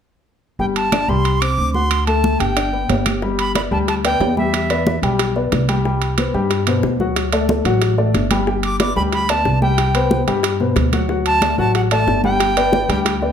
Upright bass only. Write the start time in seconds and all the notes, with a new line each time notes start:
0.59 G1
1.08 C2
1.58 D2
2.40 G1
2.90 G1
3.71 D2
4.20 E2
5.02 B1
5.52 C2
6.34 G2
6.83 D2
7.65 A1
8.14 G1
8.96 D2
9.45 C2
10.27 G2
10.76 D2
11.58 A1
12.07 G1
12.89 D2